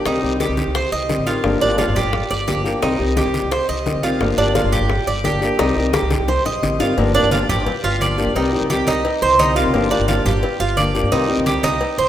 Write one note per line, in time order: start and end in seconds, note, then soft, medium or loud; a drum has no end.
0.05 0.22 C2 medium
0.05 0.22 C3 medium
0.05 0.23 D#3 medium
0.05 0.23 G3 medium
0.05 0.22 C4 medium
0.05 0.40 D#4 medium
0.05 0.21 G4 medium
0.05 high bongo medium
0.05 high conga soft
0.05 long guiro medium
0.23 0.48 C2 medium
0.23 0.38 D#3 medium
0.23 0.39 G3 medium
0.23 0.40 C4 medium
0.23 0.39 G4 medium
0.23 high conga soft
0.40 0.73 D#3 medium
0.40 0.74 G3 medium
0.40 0.74 C4 soft
0.40 0.74 G4 medium
0.40 high bongo medium
0.40 high conga medium
0.40 short guiro medium
0.49 0.65 C2 medium
0.57 high bongo soft
0.57 high conga loud
0.57 short guiro medium
0.66 0.83 C2 medium
0.75 0.92 C5 medium
0.75 muted nylon-string guitar stroke medium
0.75 high bongo medium
0.75 high conga soft
0.75 long guiro medium
0.92 1.17 C2 medium
0.92 1.26 D#5 medium
0.92 high bongo soft
0.92 high conga soft
1.09 1.26 D#3 soft
1.09 1.26 G3 medium
1.09 1.26 C4 medium
1.09 1.25 G4 medium
1.09 high bongo soft
1.09 low bongo medium
1.09 high conga medium
1.09 short guiro medium
1.18 1.35 A1 medium
1.26 1.44 D#3 medium
1.26 1.44 G3 medium
1.26 1.44 C4 medium
1.26 1.60 F4 medium
1.26 1.43 G4 medium
1.26 high bongo soft
1.26 short guiro medium
1.43 1.60 G1 medium
1.43 1.60 D3 medium
1.43 1.61 F3 medium
1.43 1.61 A#3 medium
1.43 1.60 D4 medium
1.43 1.59 G4 medium
1.43 high bongo medium
1.43 long guiro medium
1.61 1.86 G1 loud
1.61 1.77 F3 medium
1.61 1.77 A#3 medium
1.61 1.78 D4 medium
1.61 1.78 G4 medium
1.61 high conga soft
1.78 2.12 F3 medium
1.78 2.12 A#3 medium
1.78 2.12 D4 medium
1.78 1.95 F4 medium
1.78 2.13 G4 medium
1.78 high bongo medium
1.78 high conga medium
1.78 short guiro medium
1.88 2.04 G1 medium
1.95 2.29 G4 medium
1.95 high bongo soft
1.95 low conga medium
1.95 short guiro medium
2.05 2.21 G1 medium
2.13 muted nylon-string guitar stroke medium
2.13 high bongo medium
2.13 high conga soft
2.13 low conga medium
2.13 long guiro medium
2.30 2.55 G1 medium
2.30 2.47 D5 medium
2.30 high bongo soft
2.30 high conga soft
2.47 2.64 F3 medium
2.47 2.64 A#3 soft
2.47 2.64 D4 medium
2.47 2.81 G4 medium
2.47 2.63 G4 medium
2.47 high bongo soft
2.47 low bongo medium
2.47 high conga medium
2.47 short guiro medium
2.57 2.73 G1 medium
2.64 2.82 F3 medium
2.64 2.82 A#3 medium
2.64 2.82 D4 medium
2.64 2.81 G4 medium
2.64 high bongo soft
2.64 high conga soft
2.64 short guiro medium
2.81 2.99 C2 medium
2.81 2.99 C3 medium
2.81 2.99 D#3 medium
2.81 2.99 G3 medium
2.81 2.98 C4 medium
2.81 3.16 D#4 medium
2.81 2.98 G4 medium
2.81 high bongo medium
2.81 high conga soft
2.81 long guiro medium
2.99 3.24 C2 medium
2.99 3.15 D#3 medium
2.99 3.16 G3 medium
2.99 3.16 C4 medium
2.99 3.16 G4 medium
2.99 high conga soft
3.16 3.50 D#3 medium
3.16 3.50 G3 medium
3.16 3.51 C4 medium
3.16 3.50 G4 medium
3.16 3.51 G4 medium
3.16 high bongo medium
3.16 high conga loud
3.16 short guiro medium
3.26 3.42 C2 medium
3.34 high bongo soft
3.34 high conga medium
3.34 short guiro medium
3.43 3.59 C2 medium
3.51 3.68 C5 medium
3.51 muted nylon-string guitar stroke medium
3.51 high bongo medium
3.51 high conga soft
3.51 long guiro medium
3.69 3.93 C2 medium
3.69 4.02 D#5 medium
3.69 high bongo soft
3.69 high conga soft
3.86 4.02 D#3 medium
3.86 4.03 G3 medium
3.86 4.03 C4 medium
3.86 4.02 G4 medium
3.86 high bongo soft
3.86 low bongo medium
3.86 high conga medium
3.86 short guiro medium
3.95 4.11 C2 medium
4.03 4.20 D#3 medium
4.03 4.21 G3 medium
4.03 4.20 C4 medium
4.03 4.37 F4 medium
4.03 4.20 G4 medium
4.03 high bongo soft
4.03 high conga medium
4.03 short guiro medium
4.20 4.37 G1 medium
4.20 4.37 D3 medium
4.20 4.37 F3 medium
4.20 4.38 A#3 medium
4.20 4.37 D4 medium
4.20 4.36 G4 medium
4.20 high bongo medium
4.20 long guiro medium
4.37 4.63 G1 medium
4.37 4.54 F3 medium
4.37 4.55 A#3 medium
4.37 4.55 D4 medium
4.37 4.54 G4 medium
4.37 high conga soft
4.55 4.89 F3 medium
4.55 4.89 A#3 medium
4.55 4.90 D4 medium
4.55 4.72 F4 medium
4.55 4.90 G4 medium
4.55 high bongo medium
4.55 high conga loud
4.55 short guiro medium
4.64 4.81 G1 loud
4.72 5.06 G4 medium
4.72 high bongo soft
4.72 low conga medium
4.72 short guiro medium
4.81 4.98 G1 medium
4.90 muted nylon-string guitar stroke medium
4.90 high bongo medium
4.90 high conga soft
4.90 low conga medium
4.90 long guiro medium
5.07 5.32 G1 medium
5.07 5.24 D5 medium
5.07 high bongo soft
5.07 high conga soft
5.24 5.41 F3 soft
5.24 5.41 A#3 soft
5.24 5.41 D4 medium
5.24 5.58 G4 medium
5.24 5.40 G4 medium
5.24 high bongo soft
5.24 low bongo medium
5.24 high conga medium
5.24 short guiro medium
5.33 5.50 G1 medium
5.41 5.59 F3 soft
5.41 5.59 A#3 medium
5.41 5.59 D4 medium
5.41 5.58 G4 medium
5.41 high bongo soft
5.41 short guiro medium
5.59 5.76 C2 loud
5.59 5.76 C3 medium
5.59 5.76 D#3 medium
5.59 5.76 G3 medium
5.59 5.76 C4 medium
5.59 5.93 D#4 medium
5.59 5.75 G4 medium
5.59 high bongo loud
5.59 high conga soft
5.59 long guiro medium
5.76 6.01 C2 medium
5.76 5.92 D#3 medium
5.76 5.93 G3 medium
5.76 5.93 C4 medium
5.76 5.93 G4 medium
5.76 high conga soft
5.93 6.27 D#3 soft
5.93 6.28 G3 soft
5.93 6.28 C4 medium
5.93 6.27 G4 medium
5.93 6.28 G4 medium
5.93 high bongo loud
5.93 high conga loud
5.93 short guiro medium
6.02 6.19 C2 medium
6.11 high bongo medium
6.11 high conga loud
6.11 short guiro medium
6.20 6.36 C2 medium
6.28 6.45 C5 medium
6.28 muted nylon-string guitar stroke medium
6.28 low bongo loud
6.28 high conga soft
6.28 long guiro medium
6.45 6.61 A#1 medium
6.45 6.79 D#5 medium
6.45 low bongo medium
6.45 high conga soft
6.62 6.79 A1 medium
6.62 6.79 D#3 soft
6.62 6.80 G3 medium
6.62 6.79 C4 medium
6.62 6.78 G4 medium
6.62 low bongo medium
6.62 high conga medium
6.62 short guiro medium
6.79 6.96 G1 medium
6.79 6.97 D#3 medium
6.79 6.97 G3 medium
6.79 6.97 C4 medium
6.79 6.97 F4 medium
6.79 6.96 G4 medium
6.79 low bongo medium
6.79 short guiro medium
6.97 7.22 G1 medium
6.97 7.14 D3 medium
6.97 7.14 F3 medium
6.97 7.14 A#3 medium
6.97 7.14 D4 medium
6.97 7.13 G4 medium
6.97 cowbell loud
6.97 long guiro medium
7.14 7.30 F3 medium
7.14 7.31 A#3 medium
7.14 7.31 D4 medium
7.14 7.32 D4 medium
7.14 7.31 G4 medium
7.14 high conga soft
7.23 7.48 G1 medium
7.31 7.65 F3 medium
7.31 7.66 A#3 medium
7.31 7.66 D4 medium
7.31 7.49 F4 medium
7.31 7.66 G4 medium
7.31 cowbell medium
7.31 high conga loud
7.31 short guiro medium
7.49 7.66 G1 medium
7.49 7.83 G4 medium
7.49 low conga medium
7.49 short guiro medium
7.66 muted nylon-string guitar stroke medium
7.66 cowbell loud
7.66 high conga soft
7.66 low conga medium
7.66 long guiro medium
7.84 8.25 G1 loud
7.84 8.01 F4 medium
7.84 high conga soft
8.01 8.18 F3 medium
8.01 8.18 A#3 soft
8.01 8.18 D4 soft
8.01 8.17 G4 medium
8.01 8.35 D5 medium
8.01 cowbell medium
8.01 high conga medium
8.01 short guiro medium
8.18 8.35 F3 medium
8.18 8.36 A#3 medium
8.18 8.35 D4 medium
8.18 8.35 G4 medium
8.18 high conga soft
8.18 short guiro medium
8.27 8.35 G2 loud
8.35 8.60 C2 medium
8.35 8.52 C3 medium
8.35 8.52 D#3 medium
8.35 8.53 G3 medium
8.35 8.52 C4 medium
8.35 8.69 D#4 medium
8.35 8.52 G4 medium
8.35 cowbell loud
8.35 high conga soft
8.35 long guiro medium
8.52 8.69 D#3 medium
8.52 8.69 G3 medium
8.52 8.70 C4 medium
8.52 8.69 G4 medium
8.52 high conga soft
8.62 8.86 C2 medium
8.70 9.04 D#3 medium
8.70 9.04 G3 medium
8.70 9.04 C4 medium
8.70 8.87 G4 medium
8.70 9.04 G4 medium
8.70 cowbell medium
8.70 high conga loud
8.70 short guiro medium
8.87 9.04 C2 medium
8.87 9.21 D#4 medium
8.87 cowbell medium
8.87 high conga loud
8.87 short guiro medium
9.04 muted nylon-string guitar stroke medium
9.04 cowbell loud
9.04 high conga soft
9.04 long guiro medium
9.22 9.63 C2 loud
9.22 9.39 C5 medium
9.22 high conga soft
9.39 9.56 D#3 soft
9.39 9.56 G3 medium
9.39 9.55 C4 medium
9.39 9.56 D#4 medium
9.39 9.54 G4 medium
9.39 cowbell medium
9.39 high conga medium
9.39 short guiro medium
9.56 9.73 D#3 medium
9.56 9.73 G3 medium
9.56 9.73 C4 medium
9.56 9.90 F4 medium
9.56 9.73 G4 medium
9.56 short guiro medium
9.65 9.73 C3 loud
9.73 9.98 G1 loud
9.73 9.90 D3 medium
9.73 9.90 F3 medium
9.73 9.91 A#3 medium
9.73 9.90 D4 medium
9.73 9.89 G4 medium
9.73 cowbell loud
9.73 long guiro medium
9.91 10.07 F3 medium
9.91 10.08 A#3 medium
9.91 10.08 D4 medium
9.91 10.07 G4 medium
9.91 high conga soft
9.99 10.24 G1 medium
10.08 10.42 F3 medium
10.08 10.42 A#3 medium
10.08 10.43 D4 medium
10.08 10.25 F4 medium
10.08 10.43 G4 medium
10.08 cowbell medium
10.08 high conga loud
10.08 short guiro medium
10.25 10.42 G1 loud
10.25 10.59 G4 medium
10.25 low conga medium
10.25 short guiro medium
10.43 muted nylon-string guitar stroke medium
10.43 cowbell loud
10.43 high conga soft
10.43 long guiro medium
10.60 11.01 G1 loud
10.60 10.77 F4 medium
10.60 high conga soft
10.77 10.94 F3 medium
10.77 10.94 A#3 medium
10.77 10.94 D4 medium
10.77 10.93 G4 medium
10.77 11.11 D5 medium
10.77 cowbell medium
10.77 high conga medium
10.77 short guiro medium
10.95 11.12 F3 medium
10.95 11.12 A#3 medium
10.95 11.11 D4 medium
10.95 11.11 G4 medium
10.95 short guiro medium
11.03 11.11 G2 medium
11.11 11.36 C2 medium
11.11 11.28 C3 medium
11.11 11.28 D#3 medium
11.11 11.29 G3 medium
11.11 11.28 C4 medium
11.11 11.45 D#4 medium
11.11 11.27 G4 medium
11.11 cowbell loud
11.11 high conga soft
11.11 long guiro medium
11.29 11.45 D#3 medium
11.29 11.46 G3 medium
11.29 11.46 C4 medium
11.29 11.45 G4 medium
11.29 high conga soft
11.38 11.62 C2 medium
11.46 11.80 D#3 medium
11.46 11.80 G3 medium
11.46 11.80 C4 medium
11.46 11.63 G4 medium
11.46 11.80 G4 medium
11.46 cowbell medium
11.46 high conga loud
11.46 short guiro medium
11.63 11.80 C2 loud
11.63 11.97 D#4 medium
11.63 cowbell medium
11.63 high conga loud
11.63 short guiro medium
11.81 muted nylon-string guitar stroke medium
11.81 cowbell loud
11.81 high conga soft
11.81 long guiro medium
11.98 12.09 C2 medium
11.98 12.09 C5 medium
11.98 high conga soft